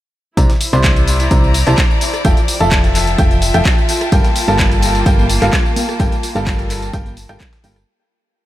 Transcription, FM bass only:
0.37 C2
0.73 C2
1.31 C2
1.67 C2
2.25 F1
2.61 F1
3.19 F1
3.54 F1
4.12 G1
4.48 G1
5.06 G1
5.42 G1
6.00 G1
6.35 G1
6.94 G1
7.29 G1
7.64 G1

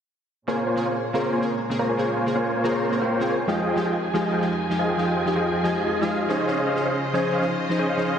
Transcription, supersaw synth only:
0.48 A#3 F4 C5 C#5 G#5
0.67 A#3 F4 C5 C#5 G#5
0.85 A#3 F4 C5 C#5 G#5
1.14 A#3 F4 C5 C#5 A#5
1.33 A#3 F4 C5 C#5 G#5
1.79 A#3 F4 C5 C#5 A#5
1.89 A#3 F4 C5 C#5 G#5
2.17 A#3 F4 C5 C#5 G#5
2.35 A#3 F4 C5 C#5 G#5
2.64 A#3 F4 C5 C#5 A#5
3.01 A#3 F4 C5 C#5 G5
3.29 A#3 F4 C5 C#5 G#5
3.48 F3 F4 G#4 D#5 G5
3.67 F3 F4 G#4 D#5 G5
3.85 F3 F4 G#4 D#5 G5
4.14 F3 F4 G#4 D#5 G#5
4.33 F3 F4 G#4 D#5 G5
4.79 F3 F4 G#4 D#5 G#5
4.89 F3 F4 G#4 D#5 G5
5.17 F3 F4 G#4 D#5 G5
5.35 F3 F4 G#4 D#5 G5
5.64 F3 F4 G#4 D#5 G#5
6.02 F3 F4 G#4 D#5 F5
6.29 C#4 G#4 C5 D#5 G#5
6.48 C#4 G#4 C5 D#5 F5
6.67 C#4 G#4 C5 D#5 F5
6.85 C#4 G#4 C5 D#5 F5
7.14 C#4 G#4 C5 D#5 G#5
7.33 C#4 G#4 C5 D#5 F5
7.79 C#4 G#4 C5 D#5 G#5
7.89 C#4 G#4 C5 D#5 F5

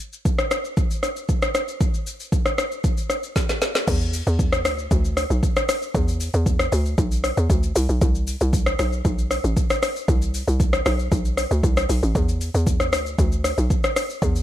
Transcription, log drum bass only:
3.88 E2
4.27 E2
4.65 D2
4.91 D2
5.30 B1
5.95 E2
6.34 E2
6.72 D2
6.98 B1
7.37 E2
7.50 D2
7.76 C2
7.89 B1
8.01 C2
8.41 C2
8.79 B1
9.05 B1
9.44 A1
10.08 C2
10.48 C2
10.86 B1
11.12 B1
11.51 D2
11.63 C2
11.89 B1
12.03 A1
12.15 E2
12.54 E2
12.93 D2
13.19 D2
13.58 B1
14.22 E2

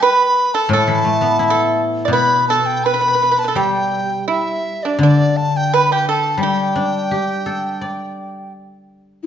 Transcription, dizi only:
0.03 B5
0.54 A5
0.73 A5
2.12 B5
2.48 A5
2.66 G5
2.85 B5
3.39 A5
3.57 G5
4.29 E5
4.83 D5
5.01 D5
5.37 A5
5.57 G5
5.74 B5
5.92 G5
6.09 A5
6.34 A5
6.42 G5

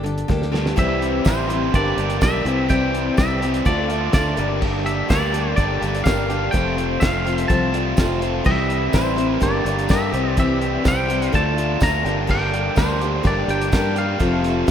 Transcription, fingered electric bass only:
Already playing: G1
0.30 D2
0.78 C2
1.26 A1
1.74 G1
1.97 G1
2.22 B1
2.45 C2
3.18 C2
3.66 D2
4.14 D2
4.38 G1
5.10 D2
5.58 G1
5.82 G1
6.06 G1
6.54 F1
7.02 F1
7.50 C2
7.98 F1
8.46 C2
8.94 A1
9.42 G1
9.65 G1
9.90 G2
10.13 C2
10.85 C2
11.34 D2
11.82 D2
12.05 G1
12.77 D2
13.25 G1
13.48 G1
13.73 G2
14.20 F1

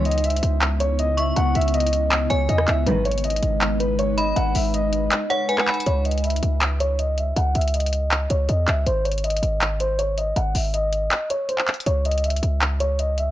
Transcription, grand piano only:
0.05 D#5
0.24 E5
0.80 C#5
0.99 D#5
1.18 E5
1.36 F#5
1.55 E5
1.74 D#5
2.30 C#5
2.49 D#5
2.68 E5
2.87 B4
3.05 C#5
3.24 D#5
3.80 B4
3.99 C#5
4.18 D#5
4.36 F#5
4.55 E5
4.74 D#5
5.30 C#5
5.49 B4
5.86 C#5
6.05 D#5
6.24 E5
6.80 C#5
6.99 D#5
7.18 E5
7.36 F#5
7.55 E5
7.74 D#5
8.30 C#5
8.49 D#5
8.68 E5
8.86 C5
9.05 C#5
9.24 D#5
9.80 C5
9.99 C#5
10.18 D#5
10.36 F#5
10.55 E5
10.74 D#5
11.30 C#5
11.49 C5
11.87 C#5
12.05 D#5
12.24 E5
12.80 C#5
12.99 D#5
13.18 E5

